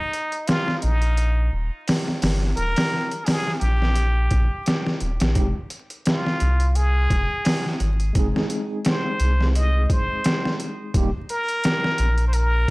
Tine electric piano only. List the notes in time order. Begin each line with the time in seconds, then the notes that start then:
5.36 G#3 C4 D#4 G4
8.13 G#3 C4
8.17 D#4 G#4
10.95 G3 A#3 D#4 G4